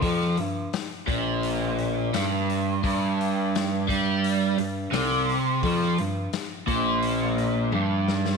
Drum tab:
HH |o-o-o-o-o-o-o-o-|o-o-o-o-o-o-o-o-|o-o-o-o-o-o-----|
SD |-o--o-------o---|----o-------o---|-o--o---------oo|
T1 |----------------|----------------|------------o---|
BD |o-----o---------|o-----o---------|o-----o---------|